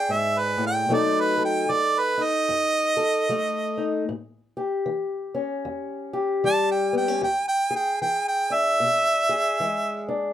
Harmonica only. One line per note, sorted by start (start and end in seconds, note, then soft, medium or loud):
0.00 0.14 G5 medium
0.12 0.41 E5 medium
0.39 0.63 B4 medium
0.67 0.95 G5 medium
0.94 1.22 D5 medium
1.21 1.44 B4 medium
1.45 1.73 G5 medium
1.71 2.01 D5 loud
1.99 2.25 B4 medium
2.23 4.04 D#5 loud
6.46 6.71 A5 loud
6.71 6.97 G5 medium
6.97 7.23 G5 medium
7.23 7.48 G5 loud
7.48 7.75 G5 loud
7.76 8.01 G5 medium
8.02 8.28 G5 loud
8.28 8.55 G5 loud
8.53 10.09 E5 loud